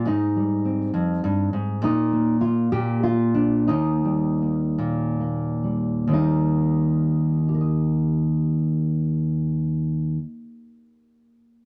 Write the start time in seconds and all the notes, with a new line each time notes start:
Already playing: G3
0.05 G#2 D#4
0.36 G3
0.65 C4
0.94 F2
1.24 G2
1.53 G#2
1.82 A#2 D#4
2.12 A#3
2.41 F4
2.72 A#2 G4
3.03 F4
3.34 D4
3.67 D#2 D#4
4.05 G3
4.42 A#3
4.78 A#2
5.20 A#3
5.64 G3
6.07 D#2 D#3 G3
6.13 A#3 D#4
7.49 G4
7.54 A#4
7.61 D#5